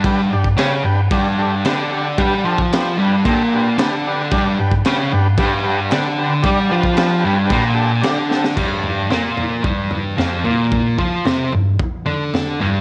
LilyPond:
<<
  \new Staff \with { instrumentName = "Transistor combo organ" } { \time 4/4 \key c \major \tempo 4 = 112 <d' g' b'>8 <d' g' d''>8 <d' g' b'>8 <d' g' b'>8 <d' g' d''>8 <d' g' a'>8 <d' g' b'>8 <d' g' d''>8 | <d' g' b'>8 <d' g' a'>8 <d' g' b'>8 <d' g' b'>8 <d' g' a'>8 <d' g' b'>8 <d' g' b'>8 <d' g' b'>8 | <d' g' d''>8 <d' g' b'>8 <d' g' b'>8 <d' g' b'>8 <d' g' b'>8 <d' g' b'>8 <d' g' b'>8 <d' g' b'>8 | <d' g' d''>8 <d' g' b'>8 <d' g' b'>8 <d' g' b'>8 <d' g' b'>8 <d' g' a'>8 <d' g' d''>8 <d' g' a'>8 |
r1 | r1 | }
  \new Staff \with { instrumentName = "Distorted electric guitar" } { \clef bass \time 4/4 \key c \major <g, g>8 g,8 <cis cis'>8 g,8 <g, g>4 <d d'>4 | <g g'>8 <f f'>4 <g, g>8 <bes, bes>4 <d d'>4 | <g, g>8 g,8 <cis cis'>8 g,8 <g, g>4 <d d'>4 | <g g'>8 <f f'>4 <g, g>8 <bes, bes>4 <d d'>4 |
<g, g>4 <bes, bes>4 <g, g>4 <f, f>8 <bes, bes>8~ | <bes, bes>8 <f f'>8 <c c'>8 g,8 r8 <d d'>4 <g, g>8 | }
  \new DrumStaff \with { instrumentName = "Drums" } \drummode { \time 4/4 <cymc bd>8. bd16 <cymc sn>4 <cymc bd>4 <cymc sn>4 | <cymc bd>8. bd16 <cymc sn>4 <cymc bd>4 <cymc sn>4 | <cymc bd>8. bd16 <cymc sn>4 <cymc bd>4 <cymc sn>4 | <cymc bd>8. bd16 <cymc sn>4 <cymc bd>4 <cymc sn>8 sn16 sn16 |
<cymc bd tomfh>8 tomfh8 <sn tomfh>8 tomfh8 <bd tomfh>8 tomfh8 <sn tomfh>8 tomfh8 | <bd tomfh>8 <bd tomfh>8 <sn tomfh>8 tomfh8 <bd tomfh>8 tomfh8 <sn tomfh>8 tomfh8 | }
>>